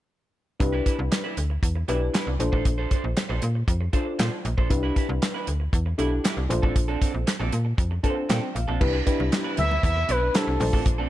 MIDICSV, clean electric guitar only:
0, 0, Header, 1, 3, 480
1, 0, Start_track
1, 0, Key_signature, 0, "major"
1, 0, Tempo, 512821
1, 564, Time_signature, 4, 2, 24, 8
1, 10381, End_track
2, 0, Start_track
2, 0, Title_t, "Clean electric guitar"
2, 0, Program_c, 0, 27
2, 680, Note_on_c, 0, 71, 75
2, 689, Note_on_c, 0, 64, 71
2, 695, Note_on_c, 0, 62, 73
2, 787, Note_off_c, 0, 62, 0
2, 796, Note_off_c, 0, 64, 0
2, 798, Note_on_c, 0, 62, 60
2, 802, Note_off_c, 0, 71, 0
2, 807, Note_on_c, 0, 64, 59
2, 813, Note_on_c, 0, 71, 63
2, 910, Note_off_c, 0, 71, 0
2, 920, Note_off_c, 0, 64, 0
2, 939, Note_off_c, 0, 62, 0
2, 1160, Note_on_c, 0, 71, 71
2, 1167, Note_on_c, 0, 64, 63
2, 1174, Note_on_c, 0, 62, 50
2, 1270, Note_off_c, 0, 62, 0
2, 1277, Note_off_c, 0, 64, 0
2, 1280, Note_off_c, 0, 71, 0
2, 1761, Note_on_c, 0, 62, 74
2, 1769, Note_on_c, 0, 64, 86
2, 1776, Note_on_c, 0, 71, 76
2, 1871, Note_off_c, 0, 71, 0
2, 1881, Note_off_c, 0, 64, 0
2, 1939, Note_off_c, 0, 62, 0
2, 1999, Note_on_c, 0, 62, 87
2, 2007, Note_on_c, 0, 64, 81
2, 2014, Note_on_c, 0, 71, 93
2, 2111, Note_off_c, 0, 71, 0
2, 2122, Note_off_c, 0, 64, 0
2, 2178, Note_off_c, 0, 62, 0
2, 2359, Note_on_c, 0, 72, 60
2, 2368, Note_on_c, 0, 69, 55
2, 2374, Note_on_c, 0, 62, 46
2, 2474, Note_off_c, 0, 62, 0
2, 2478, Note_off_c, 0, 69, 0
2, 2482, Note_off_c, 0, 72, 0
2, 2601, Note_on_c, 0, 72, 78
2, 2611, Note_on_c, 0, 69, 72
2, 2616, Note_on_c, 0, 62, 56
2, 2713, Note_off_c, 0, 62, 0
2, 2720, Note_off_c, 0, 69, 0
2, 2724, Note_on_c, 0, 62, 63
2, 2727, Note_off_c, 0, 72, 0
2, 2732, Note_on_c, 0, 69, 72
2, 2739, Note_on_c, 0, 72, 82
2, 2835, Note_off_c, 0, 72, 0
2, 2846, Note_off_c, 0, 69, 0
2, 2862, Note_off_c, 0, 62, 0
2, 3081, Note_on_c, 0, 72, 75
2, 3087, Note_on_c, 0, 69, 77
2, 3096, Note_on_c, 0, 62, 65
2, 3192, Note_off_c, 0, 62, 0
2, 3196, Note_off_c, 0, 69, 0
2, 3202, Note_off_c, 0, 72, 0
2, 3678, Note_on_c, 0, 62, 69
2, 3687, Note_on_c, 0, 69, 75
2, 3692, Note_on_c, 0, 72, 88
2, 3792, Note_off_c, 0, 72, 0
2, 3803, Note_off_c, 0, 69, 0
2, 3858, Note_off_c, 0, 62, 0
2, 3919, Note_on_c, 0, 62, 71
2, 3927, Note_on_c, 0, 69, 79
2, 3934, Note_on_c, 0, 72, 88
2, 4031, Note_off_c, 0, 72, 0
2, 4042, Note_off_c, 0, 69, 0
2, 4098, Note_off_c, 0, 62, 0
2, 4282, Note_on_c, 0, 72, 56
2, 4289, Note_on_c, 0, 69, 57
2, 4298, Note_on_c, 0, 62, 41
2, 4393, Note_off_c, 0, 62, 0
2, 4405, Note_off_c, 0, 69, 0
2, 4409, Note_off_c, 0, 72, 0
2, 4520, Note_on_c, 0, 71, 84
2, 4528, Note_on_c, 0, 64, 71
2, 4535, Note_on_c, 0, 62, 68
2, 4632, Note_off_c, 0, 62, 0
2, 4639, Note_off_c, 0, 64, 0
2, 4643, Note_on_c, 0, 62, 62
2, 4647, Note_off_c, 0, 71, 0
2, 4651, Note_on_c, 0, 64, 59
2, 4659, Note_on_c, 0, 71, 77
2, 4755, Note_off_c, 0, 71, 0
2, 4767, Note_off_c, 0, 64, 0
2, 4782, Note_off_c, 0, 62, 0
2, 5001, Note_on_c, 0, 71, 68
2, 5010, Note_on_c, 0, 64, 61
2, 5017, Note_on_c, 0, 62, 58
2, 5114, Note_off_c, 0, 62, 0
2, 5118, Note_off_c, 0, 64, 0
2, 5124, Note_off_c, 0, 71, 0
2, 5601, Note_on_c, 0, 62, 83
2, 5609, Note_on_c, 0, 64, 93
2, 5615, Note_on_c, 0, 71, 77
2, 5713, Note_off_c, 0, 71, 0
2, 5722, Note_off_c, 0, 64, 0
2, 5779, Note_off_c, 0, 62, 0
2, 5840, Note_on_c, 0, 62, 86
2, 5848, Note_on_c, 0, 64, 92
2, 5854, Note_on_c, 0, 71, 97
2, 5950, Note_off_c, 0, 71, 0
2, 5962, Note_off_c, 0, 64, 0
2, 6019, Note_off_c, 0, 62, 0
2, 6201, Note_on_c, 0, 69, 60
2, 6210, Note_on_c, 0, 62, 56
2, 6216, Note_on_c, 0, 60, 44
2, 6312, Note_off_c, 0, 60, 0
2, 6318, Note_off_c, 0, 62, 0
2, 6324, Note_off_c, 0, 69, 0
2, 6441, Note_on_c, 0, 69, 79
2, 6450, Note_on_c, 0, 62, 77
2, 6456, Note_on_c, 0, 60, 63
2, 6549, Note_off_c, 0, 60, 0
2, 6557, Note_off_c, 0, 62, 0
2, 6560, Note_on_c, 0, 60, 71
2, 6563, Note_off_c, 0, 69, 0
2, 6568, Note_on_c, 0, 62, 78
2, 6574, Note_on_c, 0, 69, 69
2, 6670, Note_off_c, 0, 69, 0
2, 6681, Note_off_c, 0, 62, 0
2, 6700, Note_off_c, 0, 60, 0
2, 6921, Note_on_c, 0, 69, 70
2, 6930, Note_on_c, 0, 62, 60
2, 6936, Note_on_c, 0, 60, 50
2, 7030, Note_off_c, 0, 60, 0
2, 7034, Note_off_c, 0, 62, 0
2, 7038, Note_off_c, 0, 69, 0
2, 7522, Note_on_c, 0, 60, 81
2, 7530, Note_on_c, 0, 62, 73
2, 7537, Note_on_c, 0, 69, 89
2, 7631, Note_off_c, 0, 69, 0
2, 7641, Note_off_c, 0, 62, 0
2, 7700, Note_off_c, 0, 60, 0
2, 7758, Note_on_c, 0, 60, 78
2, 7768, Note_on_c, 0, 62, 93
2, 7775, Note_on_c, 0, 69, 88
2, 7869, Note_off_c, 0, 69, 0
2, 7880, Note_off_c, 0, 62, 0
2, 7937, Note_off_c, 0, 60, 0
2, 8121, Note_on_c, 0, 69, 60
2, 8130, Note_on_c, 0, 62, 51
2, 8136, Note_on_c, 0, 60, 55
2, 8231, Note_off_c, 0, 62, 0
2, 8238, Note_off_c, 0, 60, 0
2, 8248, Note_off_c, 0, 69, 0
2, 8360, Note_on_c, 0, 71, 67
2, 8367, Note_on_c, 0, 64, 64
2, 8375, Note_on_c, 0, 62, 66
2, 8469, Note_off_c, 0, 62, 0
2, 8477, Note_off_c, 0, 64, 0
2, 8481, Note_on_c, 0, 62, 61
2, 8483, Note_off_c, 0, 71, 0
2, 8488, Note_on_c, 0, 64, 70
2, 8494, Note_on_c, 0, 71, 66
2, 8592, Note_off_c, 0, 71, 0
2, 8602, Note_off_c, 0, 64, 0
2, 8620, Note_off_c, 0, 62, 0
2, 8839, Note_on_c, 0, 71, 74
2, 8846, Note_on_c, 0, 64, 60
2, 8853, Note_on_c, 0, 62, 51
2, 8952, Note_off_c, 0, 62, 0
2, 8958, Note_off_c, 0, 64, 0
2, 8962, Note_off_c, 0, 71, 0
2, 9440, Note_on_c, 0, 62, 79
2, 9449, Note_on_c, 0, 64, 76
2, 9455, Note_on_c, 0, 71, 83
2, 9553, Note_off_c, 0, 71, 0
2, 9562, Note_off_c, 0, 64, 0
2, 9619, Note_off_c, 0, 62, 0
2, 9680, Note_on_c, 0, 62, 76
2, 9688, Note_on_c, 0, 64, 84
2, 9693, Note_on_c, 0, 71, 88
2, 9792, Note_off_c, 0, 71, 0
2, 9802, Note_off_c, 0, 64, 0
2, 9858, Note_off_c, 0, 62, 0
2, 10043, Note_on_c, 0, 69, 56
2, 10051, Note_on_c, 0, 62, 56
2, 10056, Note_on_c, 0, 60, 47
2, 10152, Note_off_c, 0, 60, 0
2, 10159, Note_off_c, 0, 62, 0
2, 10162, Note_off_c, 0, 69, 0
2, 10280, Note_on_c, 0, 69, 76
2, 10289, Note_on_c, 0, 62, 72
2, 10294, Note_on_c, 0, 60, 66
2, 10381, Note_off_c, 0, 60, 0
2, 10381, Note_off_c, 0, 62, 0
2, 10381, Note_off_c, 0, 69, 0
2, 10381, End_track
3, 0, Start_track
3, 0, Title_t, "Muted clean electric guitar strokes"
3, 562, Note_on_c, 9, 29, 43
3, 655, Note_off_c, 9, 29, 0
3, 921, Note_on_c, 9, 29, 35
3, 1015, Note_off_c, 9, 29, 0
3, 1041, Note_on_c, 9, 29, 47
3, 1134, Note_off_c, 9, 29, 0
3, 1281, Note_on_c, 9, 29, 35
3, 1374, Note_off_c, 9, 29, 0
3, 1405, Note_on_c, 9, 29, 45
3, 1498, Note_off_c, 9, 29, 0
3, 1642, Note_on_c, 9, 29, 44
3, 1736, Note_off_c, 9, 29, 0
3, 1882, Note_on_c, 9, 29, 34
3, 1975, Note_off_c, 9, 29, 0
3, 2123, Note_on_c, 9, 29, 37
3, 2216, Note_off_c, 9, 29, 0
3, 2243, Note_on_c, 9, 29, 41
3, 2336, Note_off_c, 9, 29, 0
3, 2485, Note_on_c, 9, 29, 37
3, 2579, Note_off_c, 9, 29, 0
3, 2846, Note_on_c, 9, 29, 38
3, 2940, Note_off_c, 9, 29, 0
3, 2964, Note_on_c, 9, 29, 38
3, 3058, Note_off_c, 9, 29, 0
3, 3203, Note_on_c, 9, 29, 42
3, 3297, Note_off_c, 9, 29, 0
3, 3325, Note_on_c, 9, 29, 35
3, 3419, Note_off_c, 9, 29, 0
3, 3443, Note_on_c, 9, 29, 33
3, 3537, Note_off_c, 9, 29, 0
3, 3562, Note_on_c, 9, 29, 43
3, 3656, Note_off_c, 9, 29, 0
3, 3803, Note_on_c, 9, 29, 45
3, 3897, Note_off_c, 9, 29, 0
3, 4042, Note_on_c, 9, 29, 43
3, 4136, Note_off_c, 9, 29, 0
3, 4162, Note_on_c, 9, 29, 38
3, 4256, Note_off_c, 9, 29, 0
3, 4404, Note_on_c, 9, 29, 39
3, 4498, Note_off_c, 9, 29, 0
3, 4766, Note_on_c, 9, 29, 43
3, 4860, Note_off_c, 9, 29, 0
3, 4887, Note_on_c, 9, 29, 41
3, 4980, Note_off_c, 9, 29, 0
3, 5125, Note_on_c, 9, 29, 43
3, 5219, Note_off_c, 9, 29, 0
3, 5241, Note_on_c, 9, 29, 33
3, 5335, Note_off_c, 9, 29, 0
3, 5485, Note_on_c, 9, 29, 44
3, 5579, Note_off_c, 9, 29, 0
3, 5724, Note_on_c, 9, 29, 37
3, 5818, Note_off_c, 9, 29, 0
3, 5961, Note_on_c, 9, 29, 45
3, 6055, Note_off_c, 9, 29, 0
3, 6085, Note_on_c, 9, 29, 42
3, 6178, Note_off_c, 9, 29, 0
3, 6324, Note_on_c, 9, 29, 34
3, 6417, Note_off_c, 9, 29, 0
3, 6681, Note_on_c, 9, 29, 36
3, 6775, Note_off_c, 9, 29, 0
3, 6801, Note_on_c, 9, 29, 44
3, 6895, Note_off_c, 9, 29, 0
3, 7041, Note_on_c, 9, 29, 37
3, 7135, Note_off_c, 9, 29, 0
3, 7159, Note_on_c, 9, 29, 43
3, 7252, Note_off_c, 9, 29, 0
3, 7278, Note_on_c, 9, 29, 36
3, 7372, Note_off_c, 9, 29, 0
3, 7403, Note_on_c, 9, 29, 42
3, 7497, Note_off_c, 9, 29, 0
3, 7642, Note_on_c, 9, 29, 39
3, 7736, Note_off_c, 9, 29, 0
3, 7880, Note_on_c, 9, 29, 46
3, 7974, Note_off_c, 9, 29, 0
3, 8001, Note_on_c, 9, 29, 41
3, 8095, Note_off_c, 9, 29, 0
3, 8242, Note_on_c, 9, 29, 45
3, 8335, Note_off_c, 9, 29, 0
3, 8603, Note_on_c, 9, 29, 47
3, 8697, Note_off_c, 9, 29, 0
3, 8721, Note_on_c, 9, 29, 35
3, 8814, Note_off_c, 9, 29, 0
3, 8963, Note_on_c, 9, 29, 43
3, 9056, Note_off_c, 9, 29, 0
3, 9083, Note_on_c, 9, 29, 51
3, 9177, Note_off_c, 9, 29, 0
3, 9322, Note_on_c, 9, 29, 49
3, 9415, Note_off_c, 9, 29, 0
3, 9564, Note_on_c, 9, 29, 39
3, 9658, Note_off_c, 9, 29, 0
3, 9803, Note_on_c, 9, 29, 44
3, 9897, Note_off_c, 9, 29, 0
3, 9923, Note_on_c, 9, 29, 44
3, 10017, Note_off_c, 9, 29, 0
3, 10381, End_track
0, 0, End_of_file